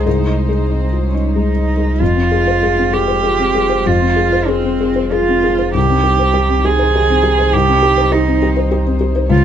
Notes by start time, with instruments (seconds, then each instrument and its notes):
Already playing: sub bass C2, string section G#3 D#4 C5
0.06 felt piano C2 G#4, cello D#4
0.27 felt piano D#4
0.49 felt piano G#4
0.71 cello C4, felt piano D#4
0.93 felt piano F4
1.05 cello C#4
1.14 felt piano D#4
1.36 felt piano G#3, cello D#4
1.56 felt piano D#4
1.77 felt piano G#4
2.00 sub bass F1, felt piano F2, string section G#3 F4 C5, cello F4
2.16 felt piano C4
2.31 felt piano G#4
2.48 felt piano C5
2.63 felt piano G#4
2.78 felt piano C4
2.93 cello G4, felt piano G#4
3.08 felt piano C5
3.23 felt piano G#4
3.39 felt piano C4
3.55 felt piano G#4
3.69 felt piano C5
3.86 felt piano F2, cello F4
4.01 felt piano C4
4.16 felt piano G#4
4.33 felt piano C5
4.48 cello C4, felt piano G#4
4.64 felt piano C4
4.80 felt piano G#4
4.96 felt piano C5
5.12 cello F4, felt piano G#4
5.29 felt piano C4
5.44 felt piano G#4
5.59 felt piano C5
5.74 felt piano C2, sub bass C2, string section D#3 D#4 C5, cello G4
5.90 felt piano C4
6.04 felt piano G4
6.19 felt piano C5
6.34 felt piano G4
6.49 felt piano C4
6.65 felt piano G4, cello G#4
6.79 felt piano C5
6.95 felt piano G4
7.10 felt piano C4
7.23 felt piano G4
7.38 felt piano C5
7.53 felt piano C2, cello G4
7.68 felt piano C4
7.83 felt piano G4
7.98 felt piano C5
8.12 cello D#4, felt piano G4
8.28 felt piano C4
8.43 felt piano G4
8.57 felt piano C5
8.71 felt piano G4
8.86 felt piano C4
9.01 felt piano G4
9.16 felt piano C5
9.29 felt piano C#2, sub bass C#2, string section G#3 C#4 C#5, cello F4